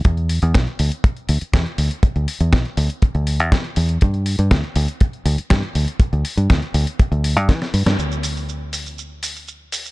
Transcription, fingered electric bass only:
\new Staff \with { instrumentName = "Fingered electric bass" } { \clef bass \time 4/4 \key g \major \tempo 4 = 121 e,8. e,16 b,,16 r16 d,16 r8. d,16 r16 e,16 r16 d,16 r16 | r16 d,16 r16 e,16 b,,16 r16 d,16 r8 d,8 e,16 r8 e,8 | g,8. g,16 d,16 r16 d,16 r8. d,16 r16 g,16 r16 d,16 r16 | r16 d,16 r16 g,16 d,16 r16 d,16 r8 d,8 g,16 e16 r16 g,16 g,16 |
d,1 | }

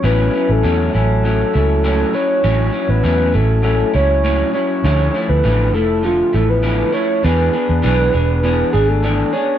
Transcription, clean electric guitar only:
\new Staff \with { instrumentName = "Clean electric guitar" } { \time 4/4 \key a \major \tempo 4 = 100 <a, fis cis' e'>8 <fis cis' e'>8 <a, fis cis' e'>8 <fis cis' e'>8 <a, fis cis' e'>8 <fis cis' e'>8 <a, fis cis' e'>8 <fis cis' e'>8 | <a, fis cis' e'>8 <fis cis' e'>8 <a, fis cis' e'>8 <fis cis' e'>8 <a, fis cis' e'>8 <fis cis' e'>8 <a, fis cis' e'>8 <fis cis' e'>8 | <d f a e'>8 <f a e'>8 <d f a e'>8 <f a e'>8 <d f a>8 <f a e'>8 <d f a e'>8 <f a e'>8 | <e b d' gis'>8 <b d' gis'>8 <e b d' gis'>8 <b d' gis'>8 <e b d' gis'>8 <b d' gis'>8 <e b d'>8 <b d' gis'>8 | }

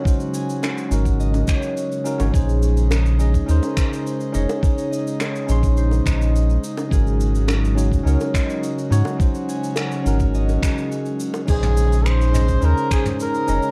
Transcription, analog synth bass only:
\new Staff \with { instrumentName = "Analog synth bass" } { \clef bass \time 4/4 \key bes \minor \tempo 4 = 105 r4. aes,,4 r4 r16 aes,,16 | bes,,2 ees,16 r4 r16 f,,16 r16 | r4. bes,,4 bes,,4 r8 | aes,,2 des,16 r4 r16 aes,16 r16 |
r4. aes,,4 r4. | bes,,2 ees,16 r4 r16 f,,16 r16 | }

